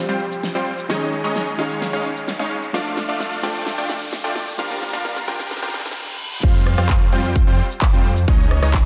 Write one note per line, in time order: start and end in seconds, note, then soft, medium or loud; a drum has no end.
0.00 0.92 F3 medium
0.00 0.91 G3 medium
0.00 0.92 C4 medium
0.00 0.92 G4 medium
0.00 riser medium
0.09 0.25 G3 medium
0.09 0.25 C4 medium
0.09 0.25 F4 medium
0.09 0.25 C5 medium
0.09 0.25 G5 medium
0.09 closed hi-hat soft
0.09 shaker soft
0.20 open hi-hat loud
0.32 closed hi-hat soft
0.32 shaker medium
0.43 snare medium
0.43 open hi-hat medium
0.43 shaker medium
0.55 0.71 G3 medium
0.55 0.71 C4 medium
0.55 0.71 F4 medium
0.55 0.71 C5 medium
0.55 0.71 G5 medium
0.55 shaker soft
0.66 open hi-hat loud
0.78 closed hi-hat soft
0.78 shaker medium
0.88 1.55 D#3 medium
0.88 1.56 G#3 medium
0.88 1.21 G#3 medium
0.88 1.21 C#4 medium
0.88 1.56 C#4 medium
0.88 1.21 D#4 medium
0.88 1.57 G#4 medium
0.88 1.21 C#5 medium
0.88 1.21 D#5 loud
0.88 snare medium
0.88 closed hi-hat medium
0.88 shaker medium
1.02 shaker soft
1.13 open hi-hat loud
1.24 1.56 G#3 medium
1.24 1.56 C#4 medium
1.24 1.56 D#4 medium
1.24 1.56 C#5 medium
1.24 1.56 D#5 loud
1.24 closed hi-hat medium
1.24 shaker medium
1.36 snare medium
1.36 closed hi-hat medium
1.36 shaker medium
1.48 shaker soft
1.57 2.71 D#3 medium
1.57 2.71 G#3 medium
1.57 1.91 G#3 medium
1.57 1.91 C#4 medium
1.57 2.72 C#4 medium
1.57 1.91 D#4 medium
1.57 2.72 G#4 medium
1.57 1.91 C#5 medium
1.57 1.91 F5 medium
1.57 open hi-hat loud
1.70 closed hi-hat medium
1.70 shaker medium
1.82 snare medium
1.82 closed hi-hat medium
1.82 shaker medium
1.93 2.10 G#3 medium
1.93 2.10 C#4 medium
1.93 2.10 D#4 medium
1.93 2.10 C#5 medium
1.93 2.10 F5 medium
1.93 closed hi-hat soft
1.93 shaker soft
2.05 open hi-hat loud
2.16 open hi-hat medium
2.16 shaker medium
2.28 snare medium
2.28 closed hi-hat medium
2.28 shaker medium
2.39 2.56 G#3 medium
2.39 2.56 C#4 medium
2.39 2.56 D#4 medium
2.39 2.56 C#5 medium
2.39 2.56 F5 medium
2.39 shaker soft
2.51 open hi-hat loud
2.63 closed hi-hat medium
2.63 shaker medium
2.73 3.40 F3 medium
2.73 3.40 A3 medium
2.73 3.06 A3 medium
2.73 3.06 D4 medium
2.73 3.41 D4 medium
2.73 3.06 F4 medium
2.73 3.41 A4 medium
2.73 3.06 D5 medium
2.73 3.06 F5 medium
2.73 snare medium
2.73 closed hi-hat medium
2.73 shaker medium
2.86 shaker soft
2.97 snare medium
2.97 open hi-hat loud
3.09 3.41 A3 medium
3.09 3.41 D4 medium
3.09 3.41 F4 medium
3.09 3.41 D5 medium
3.09 3.41 F5 loud
3.09 closed hi-hat medium
3.09 shaker medium
3.20 snare medium
3.20 closed hi-hat medium
3.20 shaker medium
3.32 shaker soft
3.42 4.55 F3 medium
3.42 4.56 A3 medium
3.42 3.75 A3 medium
3.42 3.75 D4 medium
3.42 4.56 D4 medium
3.42 3.75 F4 medium
3.42 4.57 A4 medium
3.42 3.75 D5 medium
3.42 3.75 G5 medium
3.42 snare medium
3.42 open hi-hat loud
3.55 closed hi-hat medium
3.55 shaker medium
3.66 snare medium
3.66 closed hi-hat medium
3.66 shaker medium
3.78 3.94 A3 medium
3.78 3.94 D4 medium
3.78 3.94 F4 medium
3.78 3.94 D5 medium
3.78 3.94 G5 medium
3.78 closed hi-hat soft
3.78 shaker soft
3.89 snare medium
3.89 open hi-hat loud
4.01 closed hi-hat medium
4.01 shaker medium
4.13 snare medium
4.13 open hi-hat medium
4.13 shaker medium
4.24 4.41 A3 medium
4.24 4.41 D4 medium
4.24 4.41 F4 medium
4.24 4.41 D5 medium
4.24 4.40 G5 medium
4.24 shaker soft
4.36 snare medium
4.36 open hi-hat loud
4.47 closed hi-hat medium
4.47 shaker medium
4.58 5.25 F3 medium
4.58 4.91 G3 medium
4.58 5.25 A#3 medium
4.58 4.91 D4 medium
4.58 5.25 D4 medium
4.58 4.91 F4 medium
4.58 5.26 G4 medium
4.58 4.91 A#4 medium
4.58 4.91 F5 loud
4.58 snare medium
4.58 closed hi-hat medium
4.58 shaker medium
4.70 snare medium
4.70 closed hi-hat soft
4.70 shaker soft
4.82 snare medium
4.82 open hi-hat loud
4.93 5.25 G3 medium
4.93 5.25 D4 medium
4.93 5.25 F4 medium
4.93 5.25 A#4 medium
4.93 5.25 F5 loud
4.93 snare medium
4.93 closed hi-hat medium
4.93 shaker medium
5.05 snare loud
5.05 closed hi-hat medium
5.05 shaker medium
5.16 snare medium
5.16 closed hi-hat soft
5.16 shaker soft
5.27 5.97 F3 medium
5.27 5.60 G3 medium
5.27 5.97 A#3 medium
5.27 5.60 D4 medium
5.27 5.97 D4 medium
5.27 5.60 F4 medium
5.27 5.98 G4 medium
5.27 5.60 A#4 medium
5.27 5.60 G5 medium
5.27 snare loud
5.27 open hi-hat loud
5.40 snare medium
5.40 closed hi-hat medium
5.40 shaker medium
5.51 snare loud
5.51 closed hi-hat medium
5.51 reverse cymbal medium
5.51 shaker medium
5.57 snare medium
5.63 5.79 G3 medium
5.63 5.79 D4 medium
5.63 5.79 F4 medium
5.63 5.79 A#4 medium
5.63 5.79 G5 medium
5.63 snare medium
5.63 closed hi-hat soft
5.63 shaker soft
5.68 snare medium
5.74 snare loud
5.74 open hi-hat loud
5.80 snare medium
5.86 snare medium
5.86 open hi-hat medium
5.86 shaker medium
5.91 snare medium
6.43 6.76 F2 loud
6.43 6.75 G3 medium
6.43 6.75 C4 medium
6.43 6.75 F4 medium
6.43 6.75 C5 medium
6.43 6.75 F5 loud
6.43 kick loud
6.43 closed hi-hat medium
6.43 crash loud
6.43 shaker medium
6.56 shaker soft
6.66 cross-stick medium
6.66 open hi-hat loud
6.78 7.10 F2 loud
6.78 7.10 G3 medium
6.78 7.10 C4 medium
6.78 7.10 F4 medium
6.78 7.10 C5 medium
6.78 7.10 F5 loud
6.78 cross-stick medium
6.78 closed hi-hat medium
6.78 shaker medium
6.89 kick loud
6.89 clap loud
6.89 closed hi-hat medium
6.89 shaker medium
7.02 shaker soft
7.13 7.45 F2 loud
7.13 7.44 G3 medium
7.13 7.44 C4 medium
7.13 7.44 F4 medium
7.13 7.44 C5 medium
7.13 7.44 G5 medium
7.13 open hi-hat loud
7.24 closed hi-hat medium
7.24 shaker medium
7.36 kick loud
7.36 closed hi-hat medium
7.36 shaker medium
7.47 7.61 F2 loud
7.47 7.64 G3 medium
7.47 7.64 C4 medium
7.47 7.64 F4 medium
7.47 7.64 C5 medium
7.47 7.64 G5 medium
7.47 closed hi-hat soft
7.47 shaker soft
7.59 open hi-hat loud
7.70 closed hi-hat medium
7.70 shaker medium
7.82 kick loud
7.82 clap loud
7.82 open hi-hat medium
7.82 shaker medium
7.93 8.26 F2 loud
7.93 8.10 G3 medium
7.93 8.10 C4 medium
7.93 8.10 F4 medium
7.93 8.10 C5 medium
7.93 8.10 G5 medium
7.93 shaker soft
8.05 open hi-hat loud
8.16 closed hi-hat medium
8.16 shaker medium
8.28 8.60 C#2 loud
8.28 8.60 G#3 medium
8.28 8.60 C#4 medium
8.28 8.60 D#4 medium
8.28 8.60 C#5 medium
8.28 8.60 D#5 loud
8.28 kick loud
8.28 closed hi-hat medium
8.28 shaker medium
8.40 shaker soft
8.51 cross-stick medium
8.51 open hi-hat loud
8.62 8.85 C#2 loud
8.62 8.85 G#3 medium
8.62 8.85 C#4 medium
8.62 8.85 D#4 medium
8.62 8.85 C#5 medium
8.62 8.85 D#5 loud
8.62 cross-stick medium
8.62 closed hi-hat medium
8.62 shaker medium
8.74 kick loud
8.74 clap loud
8.74 closed hi-hat medium
8.74 shaker medium